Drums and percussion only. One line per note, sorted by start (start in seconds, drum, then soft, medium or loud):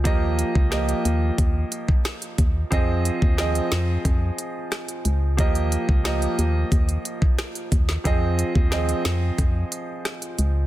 0.05 kick loud
0.05 closed hi-hat medium
0.39 closed hi-hat medium
0.55 kick medium
0.72 cross-stick medium
0.72 snare loud
0.72 closed hi-hat medium
0.89 closed hi-hat medium
1.05 closed hi-hat medium
1.38 kick loud
1.38 closed hi-hat medium
1.72 closed hi-hat medium
1.89 kick medium
2.05 cross-stick medium
2.05 snare loud
2.05 closed hi-hat medium
2.22 closed hi-hat medium
2.38 kick medium
2.38 closed hi-hat medium
2.72 kick loud
2.72 closed hi-hat medium
3.05 closed hi-hat medium
3.22 kick medium
3.38 cross-stick medium
3.38 snare loud
3.38 closed hi-hat medium
3.55 closed hi-hat medium
3.72 snare loud
3.72 closed hi-hat medium
4.05 kick loud
4.05 closed hi-hat medium
4.38 closed hi-hat medium
4.72 cross-stick loud
4.72 snare medium
4.72 closed hi-hat medium
4.88 closed hi-hat soft
5.05 closed hi-hat medium
5.39 kick loud
5.39 closed hi-hat medium
5.55 closed hi-hat medium
5.72 closed hi-hat medium
5.89 kick medium
6.05 cross-stick medium
6.05 snare loud
6.05 closed hi-hat medium
6.22 closed hi-hat medium
6.39 closed hi-hat medium
6.72 kick loud
6.72 closed hi-hat medium
6.89 closed hi-hat medium
7.05 closed hi-hat medium
7.22 kick medium
7.39 cross-stick medium
7.39 snare loud
7.39 closed hi-hat medium
7.55 closed hi-hat medium
7.72 kick medium
7.72 closed hi-hat medium
7.89 snare medium
8.05 kick loud
8.05 closed hi-hat medium
8.39 closed hi-hat medium
8.55 kick medium
8.72 cross-stick medium
8.72 snare loud
8.72 closed hi-hat medium
8.89 closed hi-hat medium
9.05 snare loud
9.05 closed hi-hat medium
9.38 kick loud
9.38 closed hi-hat medium
9.72 closed hi-hat medium
10.05 cross-stick medium
10.05 snare medium
10.05 closed hi-hat medium
10.22 closed hi-hat medium
10.39 closed hi-hat medium